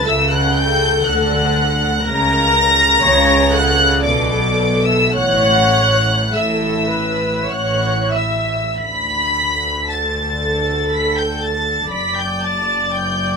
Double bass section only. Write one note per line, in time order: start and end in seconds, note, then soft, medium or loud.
0.06 0.93 C#2 loud
1.05 1.92 D2 medium
2.04 2.91 C#2 medium
3.02 3.91 C#2 loud
4.04 5.00 B1 medium
5.14 6.19 A1 medium
6.33 7.34 A1 medium
7.47 8.62 A1 medium
8.77 11.88 D2 medium
11.92 13.37 F#1 medium